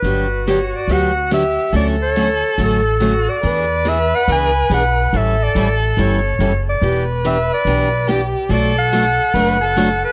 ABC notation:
X:1
M:4/4
L:1/8
Q:"Swing" 1/4=142
K:Glyd
V:1 name="Clarinet"
B2 c d f2 e2 | d c3 A3 d- | d2 e f ^g2 f2 | e d2 z c3 d- |
d z e d4 z | d f6 B |]
V:2 name="Violin"
F6 G2 | A6 F2 | B8 | A6- A z |
B6 G2 | A4 B A3 |]
V:3 name="Steel-string acoustic guitar"
[D,F,B,DG] z [D,F,B,DG] z [D,F,B,DG] z [D,F,B,DG] z | [D,F,A,CF] z [D,F,A,CF] z [D,F,A,CF] z [D,F,A,CF] z | [E,B,D^G] z [E,B,DG] z [E,B,DG] z [E,B,DG] z | [E,G,CEA] z [E,G,CEA] z [E,G,CEA] z [E,G,CEA] z |
[E,B,DG] z [E,B,DG] z [E,B,DG] z [E,B,DG] z | [B,,F,A,DF] z [B,,F,A,DF] z [B,,F,A,DF] z [B,,F,A,DF] z |]
V:4 name="Upright bass" clef=bass
G,,,4 D,,4 | D,,4 A,,,4 | E,,4 C,,2 B,,,2 | A,,,2 A,,,2 G,,,2 F,,,2 |
E,,,4 B,,,4 | B,,,4 F,,,4 |]